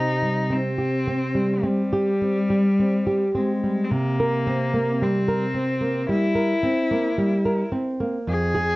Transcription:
0.00 1.61 C3 medium
0.00 0.39 C4 soft
0.00 0.53 D#4 medium
0.22 0.67 G3 soft
0.50 0.95 C4 soft
0.50 1.67 C4 medium
0.78 1.24 G4 soft
1.07 1.53 C4 soft
1.35 1.81 G3 soft
1.63 3.34 G3 medium
1.63 2.09 C4 soft
1.93 2.38 G4 soft
2.22 2.67 C4 soft
2.50 2.95 G3 soft
2.80 3.24 C4 soft
3.07 3.51 G4 soft
3.35 3.86 G#3 medium
3.35 3.79 C4 soft
3.64 3.91 G3 soft
3.84 3.93 C4 medium
3.91 6.05 C3 medium
3.91 5.04 A#3 medium
4.20 4.63 A#4 soft
4.47 4.90 C4 soft
4.74 5.17 A#3 soft
5.02 5.44 G3 medium
5.02 6.08 C4 medium
5.28 5.71 A#4 medium
5.54 5.98 C4 soft
5.81 6.24 A#3 soft
6.09 6.52 G3 medium
6.09 7.71 E4 medium
6.35 6.79 A#4 soft
6.63 7.07 C4 medium
6.91 7.35 A#3 soft
7.18 7.62 G3 medium
7.45 7.90 A#4 medium
7.72 8.17 C4 soft
8.00 8.28 A#3 soft
8.27 8.76 F2 medium
8.27 8.76 G#4 loud
8.55 8.76 G#4 medium

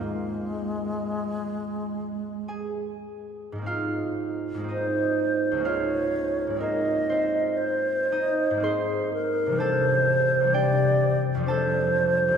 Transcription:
0.00 3.51 G#2 soft
0.00 3.54 G#3 soft
0.00 2.50 G#3 medium
0.00 3.57 A#3 soft
0.00 3.61 C4 soft
0.00 3.66 F4 soft
2.48 6.39 G#4 soft
2.48 6.38 G#5 medium
3.52 4.53 G#2 soft
3.52 4.56 G#3 soft
3.58 4.59 A#3 soft
3.58 4.63 C4 soft
3.64 4.69 D#4 soft
3.64 5.65 F4 medium
3.64 5.37 F5 medium
4.55 5.62 G#2 soft
4.55 5.53 G#3 soft
4.60 5.56 A#3 soft
4.64 5.66 C4 soft
4.68 5.63 D#4 soft
4.68 5.67 C5 medium
4.68 8.11 D#5 medium
5.52 6.59 C#2 soft
5.52 6.49 G#3 soft
5.57 6.61 A#3 soft
5.57 6.63 C#4 soft
5.64 6.57 D#4 soft
5.64 6.67 F4 medium
5.64 6.61 C#5 medium
5.64 6.66 F5 medium
6.47 8.49 G#2 soft
6.47 8.52 G#3 soft
6.57 7.10 C4 soft
6.57 8.11 D#4 soft
6.57 9.65 A#4 medium
6.62 8.56 A#3 soft
6.62 7.59 D#5 medium
7.09 8.59 C4 medium
7.09 8.65 C5 medium
7.57 8.65 C5 medium
8.12 8.61 D#4 medium
8.12 9.65 D#5 medium
8.51 9.58 G#2 soft
8.51 9.59 G#3 soft
8.57 9.61 A#3 soft
8.57 9.54 C4 soft
8.62 9.64 D#4 soft
8.62 9.13 G#4 soft
8.62 12.38 C5 medium
8.62 12.38 C6 medium
9.13 9.60 A#4 medium
9.46 10.39 C3 soft
9.46 10.42 E3 soft
9.52 10.45 G3 soft
9.52 10.49 C4 soft
9.58 10.52 D4 soft
9.58 11.48 A4 medium
9.58 10.56 C5 medium
9.58 11.20 A5 medium
10.40 11.46 C3 soft
10.40 11.47 E3 soft
10.47 11.39 G3 soft
10.47 11.42 C4 soft
10.53 11.45 D4 soft
10.53 12.38 G4 soft
10.53 11.22 D5 medium
10.53 12.38 G5 medium
11.35 12.38 F2 medium
11.35 12.38 F3 soft
11.40 12.33 G3 soft
11.40 12.36 C4 soft
11.46 12.38 D4 soft
11.46 12.38 A4 medium
11.46 12.38 C5 medium
11.46 12.38 A5 medium
12.28 12.38 C2 soft
12.28 12.38 E3 soft
12.34 12.38 G3 soft

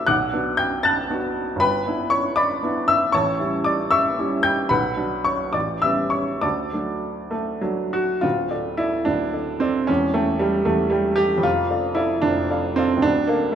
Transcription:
0.00 0.11 D2 medium
0.00 0.10 A3 medium
0.00 0.11 D4 soft
0.00 0.10 F#4 soft
0.00 0.10 B4 medium
0.00 0.10 D5 medium
0.00 0.11 E5 medium
0.00 0.08 F#5 medium
0.00 0.11 B5 medium
0.00 0.08 D6 medium
0.07 0.33 B1 medium
0.07 0.55 F#5 medium
0.07 0.55 D6 medium
0.07 0.58 F#6 loud
0.33 1.06 B3 medium
0.33 1.06 D4 medium
0.33 1.06 F#4 medium
0.57 0.83 G5 medium
0.57 0.84 G6 loud
0.83 1.57 A5 medium
0.83 1.57 F#6 medium
0.83 1.60 A6 loud
1.10 1.57 B3 medium
1.10 1.57 D4 soft
1.10 1.57 F#4 medium
1.56 1.83 G1 medium
1.56 2.10 B5 loud
1.61 2.07 B4 medium
1.61 2.07 G5 medium
1.87 2.58 B3 medium
1.87 2.59 D4 medium
1.87 2.59 E4 medium
2.10 2.35 C#5 medium
2.10 2.36 C#6 loud
2.36 2.85 D5 medium
2.36 2.85 B5 medium
2.36 2.88 D6 loud
2.63 3.10 B3 medium
2.63 3.10 D4 medium
2.63 3.11 E4 medium
2.88 3.13 E5 medium
2.88 3.14 E6 loud
3.12 3.39 A1 medium
3.12 3.62 C#5 medium
3.12 3.62 A5 medium
3.12 3.65 C#6 loud
3.40 4.14 G3 medium
3.40 4.14 C#4 medium
3.40 4.14 E4 medium
3.64 3.90 D5 medium
3.64 3.91 D6 loud
3.91 4.41 E5 medium
3.91 4.41 C#6 medium
3.91 4.44 E6 loud
4.19 4.67 G3 medium
4.19 4.67 C#4 medium
4.19 4.67 E4 medium
4.43 4.69 G5 medium
4.43 4.70 G6 loud
4.69 4.97 B1 medium
4.69 5.22 B4 medium
4.69 5.22 F#5 medium
4.69 5.25 B5 loud
4.97 5.50 F#3 soft
4.97 5.50 D4 medium
5.25 5.52 C#5 medium
5.25 5.54 C#6 loud
5.53 5.82 A1 medium
5.53 5.81 D5 medium
5.53 5.82 D6 medium
5.82 6.39 G3 soft
5.82 6.39 B3 soft
5.82 6.40 C#4 medium
5.82 6.10 E5 medium
5.82 6.12 E6 medium
6.10 6.40 C#5 medium
6.10 6.42 C#6 medium
6.41 6.72 D2 medium
6.41 7.29 D5 medium
6.41 7.29 A5 medium
6.41 7.33 D6 medium
6.73 7.60 F#3 soft
6.73 7.29 A3 soft
6.73 7.60 D4 soft
7.31 7.61 A3 medium
7.61 8.19 F#3 medium
7.61 8.19 A3 soft
7.61 8.19 D4 soft
7.93 8.23 F#4 medium
8.21 8.50 D1 medium
8.21 8.50 D2 medium
8.21 8.78 F4 loud
8.51 8.76 A4 soft
8.51 8.76 D5 medium
8.77 9.06 E4 loud
8.77 9.04 A4 soft
8.77 9.04 D5 medium
9.05 9.34 D1 medium
9.05 9.33 D2 medium
9.05 9.61 D4 medium
9.33 9.58 A4 soft
9.33 9.59 D5 medium
9.60 9.88 C4 loud
9.60 9.85 A4 medium
9.60 9.86 D5 medium
9.87 10.14 E1 medium
9.87 10.14 E2 medium
9.87 10.14 C#4 loud
10.14 10.40 A3 medium
10.14 10.38 A4 soft
10.14 10.38 G5 medium
10.39 10.66 G3 medium
10.39 10.64 A4 medium
10.39 10.64 G5 medium
10.65 10.91 E1 medium
10.65 10.91 E2 medium
10.65 10.91 A3 medium
10.90 11.17 G3 loud
10.90 11.15 A4 soft
10.90 11.15 G5 medium
11.16 11.43 G4 loud
11.16 11.41 A4 medium
11.16 11.41 G5 medium
11.38 11.67 F2 medium
11.43 11.70 F1 medium
11.43 11.97 F4 loud
11.70 11.94 A4 medium
11.70 11.94 D5 soft
11.70 11.95 F5 medium
11.95 12.23 E4 loud
11.95 12.21 A4 medium
11.95 12.21 D5 medium
11.95 12.21 F5 medium
12.22 12.49 F1 medium
12.22 12.49 F2 medium
12.22 12.76 D4 loud
12.50 12.74 A4 medium
12.50 12.74 D5 medium
12.50 12.75 F5 medium
12.76 13.02 C4 loud
12.76 13.00 A4 medium
12.76 13.00 D5 medium
12.76 13.01 F5 medium
12.97 13.24 D1 medium
13.02 13.27 D2 medium
13.02 13.27 D4 loud
13.27 13.52 A#3 loud
13.27 13.51 A4 medium
13.27 13.51 D5 medium
13.27 13.51 F5 medium
13.52 13.55 A3 medium

